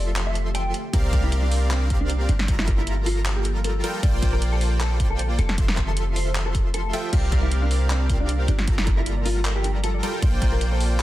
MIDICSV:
0, 0, Header, 1, 7, 480
1, 0, Start_track
1, 0, Key_signature, -1, "major"
1, 0, Tempo, 387097
1, 1159, Time_signature, 4, 2, 24, 8
1, 13670, End_track
2, 0, Start_track
2, 0, Title_t, "Supersaw synth"
2, 0, Program_c, 0, 81
2, 0, Note_on_c, 0, 53, 82
2, 0, Note_on_c, 0, 65, 76
2, 0, Note_on_c, 0, 69, 80
2, 0, Note_on_c, 0, 76, 79
2, 0, Note_on_c, 0, 84, 94
2, 891, Note_off_c, 0, 76, 0
2, 892, Note_off_c, 0, 53, 0
2, 892, Note_off_c, 0, 65, 0
2, 892, Note_off_c, 0, 69, 0
2, 892, Note_off_c, 0, 84, 0
2, 1160, Note_on_c, 0, 67, 90
2, 1160, Note_on_c, 0, 74, 97
2, 1161, Note_on_c, 0, 60, 102
2, 1161, Note_on_c, 0, 70, 97
2, 1161, Note_on_c, 0, 77, 110
2, 2333, Note_off_c, 0, 60, 0
2, 2333, Note_off_c, 0, 67, 0
2, 2333, Note_off_c, 0, 70, 0
2, 2333, Note_off_c, 0, 74, 0
2, 2333, Note_off_c, 0, 77, 0
2, 2360, Note_on_c, 0, 60, 84
2, 2360, Note_on_c, 0, 67, 81
2, 2360, Note_on_c, 0, 70, 78
2, 2360, Note_on_c, 0, 74, 80
2, 2360, Note_on_c, 0, 77, 92
2, 2826, Note_off_c, 0, 60, 0
2, 2826, Note_off_c, 0, 67, 0
2, 2826, Note_off_c, 0, 70, 0
2, 2826, Note_off_c, 0, 74, 0
2, 2826, Note_off_c, 0, 77, 0
2, 3079, Note_on_c, 0, 55, 86
2, 3079, Note_on_c, 0, 65, 76
2, 3079, Note_on_c, 0, 69, 80
2, 3079, Note_on_c, 0, 70, 79
2, 3079, Note_on_c, 0, 82, 97
2, 4732, Note_off_c, 0, 55, 0
2, 4732, Note_off_c, 0, 69, 0
2, 4732, Note_off_c, 0, 70, 0
2, 4733, Note_off_c, 0, 65, 0
2, 4733, Note_off_c, 0, 82, 0
2, 4759, Note_on_c, 0, 69, 70
2, 4760, Note_on_c, 0, 55, 74
2, 4760, Note_on_c, 0, 65, 68
2, 4760, Note_on_c, 0, 70, 69
2, 4760, Note_on_c, 0, 79, 85
2, 4973, Note_off_c, 0, 55, 0
2, 4973, Note_off_c, 0, 65, 0
2, 4973, Note_off_c, 0, 69, 0
2, 4973, Note_off_c, 0, 70, 0
2, 4973, Note_off_c, 0, 79, 0
2, 5000, Note_on_c, 0, 58, 100
2, 5000, Note_on_c, 0, 65, 94
2, 5000, Note_on_c, 0, 72, 91
2, 5000, Note_on_c, 0, 74, 93
2, 5000, Note_on_c, 0, 79, 106
2, 6173, Note_off_c, 0, 58, 0
2, 6173, Note_off_c, 0, 65, 0
2, 6173, Note_off_c, 0, 72, 0
2, 6173, Note_off_c, 0, 74, 0
2, 6173, Note_off_c, 0, 79, 0
2, 6199, Note_on_c, 0, 58, 86
2, 6199, Note_on_c, 0, 65, 80
2, 6199, Note_on_c, 0, 72, 78
2, 6200, Note_on_c, 0, 74, 82
2, 6200, Note_on_c, 0, 79, 94
2, 6666, Note_off_c, 0, 58, 0
2, 6666, Note_off_c, 0, 65, 0
2, 6666, Note_off_c, 0, 72, 0
2, 6666, Note_off_c, 0, 74, 0
2, 6666, Note_off_c, 0, 79, 0
2, 6919, Note_on_c, 0, 53, 86
2, 6919, Note_on_c, 0, 65, 80
2, 6920, Note_on_c, 0, 69, 79
2, 6920, Note_on_c, 0, 76, 79
2, 6920, Note_on_c, 0, 84, 96
2, 8572, Note_off_c, 0, 53, 0
2, 8572, Note_off_c, 0, 65, 0
2, 8573, Note_off_c, 0, 69, 0
2, 8573, Note_off_c, 0, 76, 0
2, 8573, Note_off_c, 0, 84, 0
2, 8599, Note_on_c, 0, 65, 67
2, 8599, Note_on_c, 0, 69, 70
2, 8599, Note_on_c, 0, 76, 68
2, 8599, Note_on_c, 0, 79, 84
2, 8600, Note_on_c, 0, 53, 80
2, 8812, Note_off_c, 0, 69, 0
2, 8812, Note_off_c, 0, 79, 0
2, 8813, Note_off_c, 0, 53, 0
2, 8813, Note_off_c, 0, 65, 0
2, 8813, Note_off_c, 0, 76, 0
2, 8839, Note_on_c, 0, 70, 95
2, 8840, Note_on_c, 0, 60, 102
2, 8840, Note_on_c, 0, 67, 96
2, 8840, Note_on_c, 0, 74, 96
2, 8840, Note_on_c, 0, 77, 113
2, 10012, Note_off_c, 0, 70, 0
2, 10013, Note_off_c, 0, 60, 0
2, 10013, Note_off_c, 0, 67, 0
2, 10013, Note_off_c, 0, 74, 0
2, 10013, Note_off_c, 0, 77, 0
2, 10039, Note_on_c, 0, 70, 80
2, 10040, Note_on_c, 0, 60, 87
2, 10040, Note_on_c, 0, 67, 80
2, 10040, Note_on_c, 0, 74, 79
2, 10040, Note_on_c, 0, 77, 98
2, 10506, Note_off_c, 0, 60, 0
2, 10506, Note_off_c, 0, 67, 0
2, 10506, Note_off_c, 0, 70, 0
2, 10506, Note_off_c, 0, 74, 0
2, 10506, Note_off_c, 0, 77, 0
2, 10759, Note_on_c, 0, 55, 90
2, 10759, Note_on_c, 0, 65, 77
2, 10759, Note_on_c, 0, 69, 80
2, 10760, Note_on_c, 0, 70, 77
2, 10760, Note_on_c, 0, 82, 93
2, 12413, Note_off_c, 0, 55, 0
2, 12413, Note_off_c, 0, 65, 0
2, 12413, Note_off_c, 0, 69, 0
2, 12413, Note_off_c, 0, 70, 0
2, 12413, Note_off_c, 0, 82, 0
2, 12439, Note_on_c, 0, 55, 77
2, 12439, Note_on_c, 0, 65, 70
2, 12439, Note_on_c, 0, 69, 68
2, 12439, Note_on_c, 0, 70, 71
2, 12439, Note_on_c, 0, 79, 84
2, 12652, Note_off_c, 0, 55, 0
2, 12652, Note_off_c, 0, 65, 0
2, 12652, Note_off_c, 0, 69, 0
2, 12652, Note_off_c, 0, 70, 0
2, 12652, Note_off_c, 0, 79, 0
2, 12678, Note_on_c, 0, 58, 106
2, 12679, Note_on_c, 0, 65, 97
2, 12679, Note_on_c, 0, 72, 98
2, 12679, Note_on_c, 0, 74, 90
2, 13670, Note_off_c, 0, 58, 0
2, 13670, Note_off_c, 0, 65, 0
2, 13670, Note_off_c, 0, 72, 0
2, 13670, Note_off_c, 0, 74, 0
2, 13670, End_track
3, 0, Start_track
3, 0, Title_t, "Synth arpeggio sound"
3, 0, Program_c, 1, 84
3, 8840, Note_on_c, 1, 65, 84
3, 8921, Note_off_c, 1, 65, 0
3, 8970, Note_on_c, 1, 65, 98
3, 9039, Note_off_c, 1, 65, 0
3, 9079, Note_on_c, 1, 67, 78
3, 9160, Note_off_c, 1, 67, 0
3, 9209, Note_on_c, 1, 77, 75
3, 9278, Note_off_c, 1, 77, 0
3, 9319, Note_on_c, 1, 67, 88
3, 9400, Note_off_c, 1, 67, 0
3, 9448, Note_on_c, 1, 77, 100
3, 9490, Note_off_c, 1, 77, 0
3, 9559, Note_on_c, 1, 72, 73
3, 9608, Note_off_c, 1, 72, 0
3, 9688, Note_on_c, 1, 79, 70
3, 9758, Note_off_c, 1, 79, 0
3, 9799, Note_on_c, 1, 72, 99
3, 9880, Note_off_c, 1, 72, 0
3, 9927, Note_on_c, 1, 72, 98
3, 9969, Note_off_c, 1, 72, 0
3, 10039, Note_on_c, 1, 65, 76
3, 10161, Note_off_c, 1, 65, 0
3, 10169, Note_on_c, 1, 77, 100
3, 10210, Note_off_c, 1, 77, 0
3, 10279, Note_on_c, 1, 67, 83
3, 10360, Note_off_c, 1, 67, 0
3, 10408, Note_on_c, 1, 77, 104
3, 10450, Note_off_c, 1, 77, 0
3, 10518, Note_on_c, 1, 67, 77
3, 10641, Note_off_c, 1, 67, 0
3, 10648, Note_on_c, 1, 65, 78
3, 10718, Note_off_c, 1, 65, 0
3, 10759, Note_on_c, 1, 62, 86
3, 10840, Note_off_c, 1, 62, 0
3, 10889, Note_on_c, 1, 62, 103
3, 10958, Note_off_c, 1, 62, 0
3, 10999, Note_on_c, 1, 65, 76
3, 11080, Note_off_c, 1, 65, 0
3, 11128, Note_on_c, 1, 74, 81
3, 11197, Note_off_c, 1, 74, 0
3, 11237, Note_on_c, 1, 65, 85
3, 11319, Note_off_c, 1, 65, 0
3, 11367, Note_on_c, 1, 74, 106
3, 11409, Note_off_c, 1, 74, 0
3, 11477, Note_on_c, 1, 70, 74
3, 11527, Note_off_c, 1, 70, 0
3, 11607, Note_on_c, 1, 77, 75
3, 11677, Note_off_c, 1, 77, 0
3, 11717, Note_on_c, 1, 70, 101
3, 11799, Note_off_c, 1, 70, 0
3, 11846, Note_on_c, 1, 70, 101
3, 11889, Note_off_c, 1, 70, 0
3, 11957, Note_on_c, 1, 62, 75
3, 12080, Note_off_c, 1, 62, 0
3, 12086, Note_on_c, 1, 74, 104
3, 12129, Note_off_c, 1, 74, 0
3, 12198, Note_on_c, 1, 65, 83
3, 12280, Note_off_c, 1, 65, 0
3, 12328, Note_on_c, 1, 74, 106
3, 12370, Note_off_c, 1, 74, 0
3, 12438, Note_on_c, 1, 67, 79
3, 12560, Note_off_c, 1, 67, 0
3, 12568, Note_on_c, 1, 65, 79
3, 12637, Note_off_c, 1, 65, 0
3, 12679, Note_on_c, 1, 62, 83
3, 12760, Note_off_c, 1, 62, 0
3, 12809, Note_on_c, 1, 62, 93
3, 12878, Note_off_c, 1, 62, 0
3, 12919, Note_on_c, 1, 65, 77
3, 13000, Note_off_c, 1, 65, 0
3, 13047, Note_on_c, 1, 72, 77
3, 13117, Note_off_c, 1, 72, 0
3, 13156, Note_on_c, 1, 65, 84
3, 13239, Note_off_c, 1, 65, 0
3, 13286, Note_on_c, 1, 72, 105
3, 13329, Note_off_c, 1, 72, 0
3, 13398, Note_on_c, 1, 70, 72
3, 13447, Note_off_c, 1, 70, 0
3, 13526, Note_on_c, 1, 74, 72
3, 13596, Note_off_c, 1, 74, 0
3, 13670, End_track
4, 0, Start_track
4, 0, Title_t, "Clean electric guitar"
4, 0, Program_c, 2, 27
4, 0, Note_on_c, 2, 74, 90
4, 144, Note_off_c, 2, 74, 0
4, 330, Note_on_c, 2, 76, 90
4, 505, Note_off_c, 2, 76, 0
4, 678, Note_on_c, 2, 79, 96
4, 919, Note_off_c, 2, 79, 0
4, 1161, Note_on_c, 2, 67, 103
4, 1345, Note_off_c, 2, 67, 0
4, 1530, Note_on_c, 2, 64, 94
4, 1640, Note_off_c, 2, 64, 0
4, 1768, Note_on_c, 2, 62, 96
4, 1944, Note_off_c, 2, 62, 0
4, 2120, Note_on_c, 2, 62, 93
4, 2305, Note_off_c, 2, 62, 0
4, 2488, Note_on_c, 2, 62, 92
4, 2664, Note_off_c, 2, 62, 0
4, 2840, Note_on_c, 2, 62, 90
4, 3025, Note_off_c, 2, 62, 0
4, 3211, Note_on_c, 2, 64, 86
4, 3320, Note_off_c, 2, 64, 0
4, 3449, Note_on_c, 2, 64, 103
4, 3625, Note_off_c, 2, 64, 0
4, 3801, Note_on_c, 2, 65, 96
4, 3985, Note_off_c, 2, 65, 0
4, 4170, Note_on_c, 2, 67, 92
4, 4345, Note_off_c, 2, 67, 0
4, 4520, Note_on_c, 2, 69, 93
4, 4760, Note_off_c, 2, 69, 0
4, 5000, Note_on_c, 2, 74, 95
4, 5185, Note_off_c, 2, 74, 0
4, 5369, Note_on_c, 2, 70, 98
4, 5479, Note_off_c, 2, 70, 0
4, 5608, Note_on_c, 2, 69, 92
4, 5784, Note_off_c, 2, 69, 0
4, 5960, Note_on_c, 2, 69, 94
4, 6145, Note_off_c, 2, 69, 0
4, 6328, Note_on_c, 2, 69, 96
4, 6504, Note_off_c, 2, 69, 0
4, 6680, Note_on_c, 2, 69, 98
4, 6865, Note_off_c, 2, 69, 0
4, 7050, Note_on_c, 2, 70, 89
4, 7160, Note_off_c, 2, 70, 0
4, 7288, Note_on_c, 2, 69, 103
4, 7464, Note_off_c, 2, 69, 0
4, 7638, Note_on_c, 2, 72, 92
4, 7824, Note_off_c, 2, 72, 0
4, 8008, Note_on_c, 2, 69, 89
4, 8184, Note_off_c, 2, 69, 0
4, 8359, Note_on_c, 2, 69, 93
4, 8600, Note_off_c, 2, 69, 0
4, 8838, Note_on_c, 2, 67, 100
4, 9024, Note_off_c, 2, 67, 0
4, 9209, Note_on_c, 2, 64, 98
4, 9320, Note_off_c, 2, 64, 0
4, 9450, Note_on_c, 2, 62, 94
4, 9625, Note_off_c, 2, 62, 0
4, 9801, Note_on_c, 2, 62, 94
4, 9985, Note_off_c, 2, 62, 0
4, 10169, Note_on_c, 2, 62, 94
4, 10345, Note_off_c, 2, 62, 0
4, 10519, Note_on_c, 2, 62, 95
4, 10704, Note_off_c, 2, 62, 0
4, 10887, Note_on_c, 2, 64, 88
4, 10999, Note_off_c, 2, 64, 0
4, 11128, Note_on_c, 2, 64, 98
4, 11304, Note_off_c, 2, 64, 0
4, 11478, Note_on_c, 2, 65, 90
4, 11664, Note_off_c, 2, 65, 0
4, 11850, Note_on_c, 2, 67, 94
4, 12025, Note_off_c, 2, 67, 0
4, 12198, Note_on_c, 2, 69, 95
4, 12440, Note_off_c, 2, 69, 0
4, 12680, Note_on_c, 2, 74, 101
4, 12865, Note_off_c, 2, 74, 0
4, 13047, Note_on_c, 2, 70, 97
4, 13159, Note_off_c, 2, 70, 0
4, 13288, Note_on_c, 2, 69, 97
4, 13464, Note_off_c, 2, 69, 0
4, 13670, End_track
5, 0, Start_track
5, 0, Title_t, "Ambient pad"
5, 0, Program_c, 3, 92
5, 0, Note_on_c, 3, 57, 76
5, 0, Note_on_c, 3, 67, 93
5, 1137, Note_off_c, 3, 57, 0
5, 1138, Note_off_c, 3, 67, 0
5, 1158, Note_on_c, 3, 48, 76
5, 1158, Note_on_c, 3, 58, 75
5, 1159, Note_on_c, 3, 65, 90
5, 2822, Note_off_c, 3, 48, 0
5, 2822, Note_off_c, 3, 65, 0
5, 2841, Note_on_c, 3, 53, 78
5, 2841, Note_on_c, 3, 67, 86
5, 4960, Note_off_c, 3, 58, 0
5, 4978, Note_off_c, 3, 53, 0
5, 4996, Note_on_c, 3, 50, 77
5, 4997, Note_on_c, 3, 60, 76
5, 6642, Note_off_c, 3, 67, 0
5, 6661, Note_off_c, 3, 50, 0
5, 6661, Note_off_c, 3, 60, 0
5, 6681, Note_on_c, 3, 57, 73
5, 6681, Note_on_c, 3, 67, 87
5, 8818, Note_off_c, 3, 57, 0
5, 8818, Note_off_c, 3, 67, 0
5, 8841, Note_on_c, 3, 48, 80
5, 8841, Note_on_c, 3, 58, 79
5, 8842, Note_on_c, 3, 65, 89
5, 10503, Note_off_c, 3, 48, 0
5, 10504, Note_off_c, 3, 65, 0
5, 10518, Note_on_c, 3, 53, 80
5, 10519, Note_on_c, 3, 67, 86
5, 12642, Note_off_c, 3, 58, 0
5, 12657, Note_off_c, 3, 53, 0
5, 12678, Note_on_c, 3, 60, 75
5, 12679, Note_on_c, 3, 50, 81
5, 13670, Note_off_c, 3, 50, 0
5, 13670, Note_off_c, 3, 60, 0
5, 13670, Note_off_c, 3, 67, 0
5, 13670, End_track
6, 0, Start_track
6, 0, Title_t, "808-style bass"
6, 0, Program_c, 4, 38
6, 0, Note_on_c, 4, 29, 91
6, 897, Note_off_c, 4, 29, 0
6, 1159, Note_on_c, 4, 36, 91
6, 2817, Note_off_c, 4, 36, 0
6, 2840, Note_on_c, 4, 31, 91
6, 4737, Note_off_c, 4, 31, 0
6, 4999, Note_on_c, 4, 34, 96
6, 6657, Note_off_c, 4, 34, 0
6, 6679, Note_on_c, 4, 29, 92
6, 8577, Note_off_c, 4, 29, 0
6, 8839, Note_on_c, 4, 36, 96
6, 10497, Note_off_c, 4, 36, 0
6, 10520, Note_on_c, 4, 31, 93
6, 12417, Note_off_c, 4, 31, 0
6, 12679, Note_on_c, 4, 34, 89
6, 13670, Note_off_c, 4, 34, 0
6, 13670, End_track
7, 0, Start_track
7, 0, Title_t, "Drums"
7, 199, Note_on_c, 9, 39, 120
7, 199, Note_on_c, 9, 42, 75
7, 323, Note_off_c, 9, 39, 0
7, 323, Note_off_c, 9, 42, 0
7, 439, Note_on_c, 9, 42, 60
7, 563, Note_off_c, 9, 42, 0
7, 679, Note_on_c, 9, 42, 79
7, 803, Note_off_c, 9, 42, 0
7, 919, Note_on_c, 9, 42, 61
7, 1043, Note_off_c, 9, 42, 0
7, 1159, Note_on_c, 9, 36, 124
7, 1159, Note_on_c, 9, 42, 81
7, 1283, Note_off_c, 9, 36, 0
7, 1283, Note_off_c, 9, 42, 0
7, 1399, Note_on_c, 9, 36, 117
7, 1400, Note_on_c, 9, 42, 64
7, 1523, Note_off_c, 9, 36, 0
7, 1524, Note_off_c, 9, 42, 0
7, 1639, Note_on_c, 9, 42, 73
7, 1763, Note_off_c, 9, 42, 0
7, 1879, Note_on_c, 9, 46, 92
7, 2003, Note_off_c, 9, 46, 0
7, 2118, Note_on_c, 9, 39, 122
7, 2118, Note_on_c, 9, 42, 76
7, 2242, Note_off_c, 9, 39, 0
7, 2242, Note_off_c, 9, 42, 0
7, 2358, Note_on_c, 9, 42, 62
7, 2359, Note_on_c, 9, 36, 64
7, 2482, Note_off_c, 9, 42, 0
7, 2483, Note_off_c, 9, 36, 0
7, 2598, Note_on_c, 9, 42, 76
7, 2722, Note_off_c, 9, 42, 0
7, 2838, Note_on_c, 9, 42, 58
7, 2962, Note_off_c, 9, 42, 0
7, 2967, Note_on_c, 9, 38, 65
7, 3078, Note_on_c, 9, 42, 82
7, 3079, Note_on_c, 9, 36, 115
7, 3091, Note_off_c, 9, 38, 0
7, 3202, Note_off_c, 9, 42, 0
7, 3203, Note_off_c, 9, 36, 0
7, 3209, Note_on_c, 9, 38, 88
7, 3319, Note_on_c, 9, 36, 106
7, 3319, Note_on_c, 9, 42, 65
7, 3333, Note_off_c, 9, 38, 0
7, 3443, Note_off_c, 9, 36, 0
7, 3443, Note_off_c, 9, 42, 0
7, 3559, Note_on_c, 9, 42, 79
7, 3683, Note_off_c, 9, 42, 0
7, 3798, Note_on_c, 9, 46, 95
7, 3922, Note_off_c, 9, 46, 0
7, 4038, Note_on_c, 9, 39, 120
7, 4038, Note_on_c, 9, 42, 82
7, 4162, Note_off_c, 9, 39, 0
7, 4162, Note_off_c, 9, 42, 0
7, 4278, Note_on_c, 9, 42, 68
7, 4402, Note_off_c, 9, 42, 0
7, 4519, Note_on_c, 9, 42, 78
7, 4643, Note_off_c, 9, 42, 0
7, 4759, Note_on_c, 9, 42, 66
7, 4883, Note_off_c, 9, 42, 0
7, 4998, Note_on_c, 9, 42, 83
7, 4999, Note_on_c, 9, 36, 118
7, 5122, Note_off_c, 9, 42, 0
7, 5123, Note_off_c, 9, 36, 0
7, 5239, Note_on_c, 9, 36, 104
7, 5239, Note_on_c, 9, 42, 69
7, 5363, Note_off_c, 9, 36, 0
7, 5363, Note_off_c, 9, 42, 0
7, 5479, Note_on_c, 9, 42, 86
7, 5603, Note_off_c, 9, 42, 0
7, 5718, Note_on_c, 9, 46, 92
7, 5842, Note_off_c, 9, 46, 0
7, 5959, Note_on_c, 9, 39, 117
7, 5959, Note_on_c, 9, 42, 80
7, 6083, Note_off_c, 9, 39, 0
7, 6083, Note_off_c, 9, 42, 0
7, 6199, Note_on_c, 9, 36, 58
7, 6199, Note_on_c, 9, 42, 69
7, 6323, Note_off_c, 9, 36, 0
7, 6323, Note_off_c, 9, 42, 0
7, 6439, Note_on_c, 9, 42, 81
7, 6563, Note_off_c, 9, 42, 0
7, 6679, Note_on_c, 9, 42, 63
7, 6803, Note_off_c, 9, 42, 0
7, 6808, Note_on_c, 9, 38, 62
7, 6918, Note_on_c, 9, 36, 120
7, 6919, Note_on_c, 9, 42, 89
7, 6932, Note_off_c, 9, 38, 0
7, 7042, Note_off_c, 9, 36, 0
7, 7043, Note_off_c, 9, 42, 0
7, 7048, Note_on_c, 9, 38, 77
7, 7159, Note_on_c, 9, 36, 102
7, 7159, Note_on_c, 9, 39, 61
7, 7159, Note_on_c, 9, 42, 72
7, 7172, Note_off_c, 9, 38, 0
7, 7283, Note_off_c, 9, 36, 0
7, 7283, Note_off_c, 9, 39, 0
7, 7283, Note_off_c, 9, 42, 0
7, 7399, Note_on_c, 9, 42, 83
7, 7523, Note_off_c, 9, 42, 0
7, 7640, Note_on_c, 9, 46, 89
7, 7764, Note_off_c, 9, 46, 0
7, 7879, Note_on_c, 9, 39, 122
7, 7879, Note_on_c, 9, 42, 84
7, 8003, Note_off_c, 9, 39, 0
7, 8003, Note_off_c, 9, 42, 0
7, 8118, Note_on_c, 9, 42, 68
7, 8119, Note_on_c, 9, 36, 55
7, 8242, Note_off_c, 9, 42, 0
7, 8243, Note_off_c, 9, 36, 0
7, 8358, Note_on_c, 9, 42, 88
7, 8482, Note_off_c, 9, 42, 0
7, 8598, Note_on_c, 9, 42, 70
7, 8722, Note_off_c, 9, 42, 0
7, 8838, Note_on_c, 9, 42, 82
7, 8838, Note_on_c, 9, 49, 75
7, 8839, Note_on_c, 9, 36, 123
7, 8962, Note_off_c, 9, 42, 0
7, 8962, Note_off_c, 9, 49, 0
7, 8963, Note_off_c, 9, 36, 0
7, 9078, Note_on_c, 9, 42, 69
7, 9079, Note_on_c, 9, 36, 113
7, 9202, Note_off_c, 9, 42, 0
7, 9203, Note_off_c, 9, 36, 0
7, 9319, Note_on_c, 9, 42, 80
7, 9443, Note_off_c, 9, 42, 0
7, 9558, Note_on_c, 9, 46, 90
7, 9682, Note_off_c, 9, 46, 0
7, 9798, Note_on_c, 9, 39, 117
7, 9798, Note_on_c, 9, 42, 87
7, 9922, Note_off_c, 9, 39, 0
7, 9922, Note_off_c, 9, 42, 0
7, 10038, Note_on_c, 9, 42, 67
7, 10039, Note_on_c, 9, 36, 58
7, 10162, Note_off_c, 9, 42, 0
7, 10163, Note_off_c, 9, 36, 0
7, 10278, Note_on_c, 9, 42, 86
7, 10402, Note_off_c, 9, 42, 0
7, 10518, Note_on_c, 9, 42, 69
7, 10642, Note_off_c, 9, 42, 0
7, 10646, Note_on_c, 9, 38, 61
7, 10757, Note_on_c, 9, 42, 80
7, 10759, Note_on_c, 9, 36, 127
7, 10770, Note_off_c, 9, 38, 0
7, 10881, Note_off_c, 9, 42, 0
7, 10883, Note_off_c, 9, 36, 0
7, 10888, Note_on_c, 9, 38, 80
7, 10997, Note_on_c, 9, 42, 69
7, 10999, Note_on_c, 9, 36, 121
7, 11012, Note_off_c, 9, 38, 0
7, 11121, Note_off_c, 9, 42, 0
7, 11123, Note_off_c, 9, 36, 0
7, 11237, Note_on_c, 9, 42, 79
7, 11361, Note_off_c, 9, 42, 0
7, 11477, Note_on_c, 9, 46, 86
7, 11601, Note_off_c, 9, 46, 0
7, 11718, Note_on_c, 9, 39, 123
7, 11718, Note_on_c, 9, 42, 81
7, 11842, Note_off_c, 9, 39, 0
7, 11842, Note_off_c, 9, 42, 0
7, 11957, Note_on_c, 9, 42, 66
7, 12081, Note_off_c, 9, 42, 0
7, 12197, Note_on_c, 9, 42, 84
7, 12321, Note_off_c, 9, 42, 0
7, 12438, Note_on_c, 9, 42, 67
7, 12562, Note_off_c, 9, 42, 0
7, 12678, Note_on_c, 9, 36, 127
7, 12678, Note_on_c, 9, 42, 80
7, 12802, Note_off_c, 9, 36, 0
7, 12802, Note_off_c, 9, 42, 0
7, 12918, Note_on_c, 9, 42, 67
7, 12919, Note_on_c, 9, 36, 122
7, 13042, Note_off_c, 9, 42, 0
7, 13043, Note_off_c, 9, 36, 0
7, 13159, Note_on_c, 9, 42, 80
7, 13283, Note_off_c, 9, 42, 0
7, 13398, Note_on_c, 9, 46, 83
7, 13522, Note_off_c, 9, 46, 0
7, 13670, End_track
0, 0, End_of_file